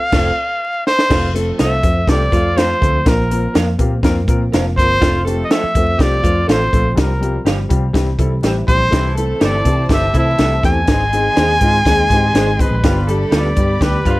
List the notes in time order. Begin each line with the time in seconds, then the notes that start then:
Already playing: F5
0.12 F1 A3 C4 F4 A4 C5 F5, kick, snare, crash
0.87 C5, snare
0.99 snare
1.09 F1 F3 A3 C4 F4 A4, kick, snare, crash
1.34 A3 C4 F4 A4, closed hi-hat
1.59 C2 A3 C4 F4 A4 C5 E5 F5, snare, closed hi-hat
1.83 F2 A3 C4 F4 A4, kick, closed hi-hat
2.07 C2 G3 A3 C4 F4 G4 A4 D5, kick, snare, closed hi-hat
2.32 F2 F3 A3 C4 F4 A4, kick, closed hi-hat
2.56 A3 C4 F4 A4 C5 F5, snare, closed hi-hat
2.81 D2 A3 C4 F4 A4, kick, closed hi-hat
3.05 A#1 F3 A#3 C4 F4 A#4, kick, snare, closed hi-hat
3.30 A#3 C4 F4 A#4, closed hi-hat
3.54 F2 A#3 C4 F4 A#4 C5 F5, snare, closed hi-hat
3.79 A#2 A#3 C4 F4 G4, kick, closed hi-hat
4.03 F2 A#3 C4 F4 A#4, kick, snare, closed hi-hat
4.28 A#2 A#3 C4 F4 A#4, kick, closed hi-hat
4.52 F1 A#3 C4 F4 A#4 C5 F5, snare, closed hi-hat
4.78 G1 A#3 C4 F4 A#4 C5, kick, snare, closed hi-hat
5.00 F1 F3 A3 C4 F4 A4, kick, snare, closed hi-hat
5.25 A3 C4 F4 G4 A4, closed hi-hat
5.44 D#5
5.50 A3 C4 F4 A4 C5 E5 F5, snare, closed hi-hat
5.63 muted fingered electric bass stroke
5.75 F2 A3 C4 F4 A4, kick, closed hi-hat
5.99 C2 G3 A3 C4 F4 G4 D5, kick, snare, closed hi-hat
6.22 F2 F3 A3 C4 F4 A4, kick, closed hi-hat
6.47 A1 A3 C4 F4 A4 C5 F5, snare, closed hi-hat
6.73 A#1 A3 C4 F4 A4, kick, closed hi-hat
6.95 C2 G3 C4 F4 G4, kick, snare, closed hi-hat
7.01 A#4
7.21 G3 C4 F4 G4, closed hi-hat
7.44 G1 G3 C4 F4 G4 C5 F5, snare, closed hi-hat
7.69 C3 G3 C4 F4 G4, kick, closed hi-hat
7.93 C2 G3 C4 E4 G4, kick, snare, closed hi-hat
8.18 C3 G3 C4 E4 A4, kick, closed hi-hat
8.42 A1 G3 C4 E4 G4 C5 E5, snare, closed hi-hat
8.67 A#1 G3 C4 E4 G4 C5, kick, closed hi-hat
8.91 C2 E3 A3 C4 E4 G4 C5 A5, kick, snare, closed hi-hat
9.16 A3 C4 E4 A4, closed hi-hat
9.40 G1 A3 C4 E4 G4 A4 D5 E5, snare, closed hi-hat
9.65 C3 A3 C4 E4 G4, kick, closed hi-hat
9.89 G1 G3 A3 C4 E4 G4 A4, kick, snare, closed hi-hat
9.93 E5
10.13 C3 E3 A3 C4 E4 A4, kick, closed hi-hat
10.19 E5
10.38 C2 A3 C4 E4 G4 A4 E5, snare, closed hi-hat
10.63 E2 A3 C4 E4 G4 G#5, kick, snare, closed hi-hat
10.87 G#1 D#3 G#3 C4 D#4 G#4 D#5 C6, kick, snare, closed hi-hat
11.12 G#3 C4 D#4 G#4, closed hi-hat
11.36 D#2 G#3 C4 D#4 G#4 C5 D#5, snare, closed hi-hat
11.61 G#2 G#3 C4 D#4 F4, kick, closed hi-hat
11.85 D#2 G#3 C4 D#4 G#4, kick, snare, closed hi-hat
12.10 G#2 G#3 C4 D#4 G4, kick, closed hi-hat
12.34 G#1 G#3 C4 D#4 G#4 C5 D#5, snare, closed hi-hat
12.59 G#3 C4 D#4 G#4 B4, kick, closed hi-hat
12.71 A#1
12.83 G1 D3 F3 G3 B3 D4 F4 G4 D5 B5, kick, snare, closed hi-hat
13.07 G3 A3 B3 D4 G4 A4, closed hi-hat
13.31 D2 G3 B3 D4 F4 G4 B4 D5, snare, closed hi-hat
13.56 G2 G3 B3 D4 G4, kick, closed hi-hat
13.80 D2 G3 B3 D4 G4 B4, kick, snare, closed hi-hat
14.05 G2 F3 G3 B3 D4 F4 G4, kick, closed hi-hat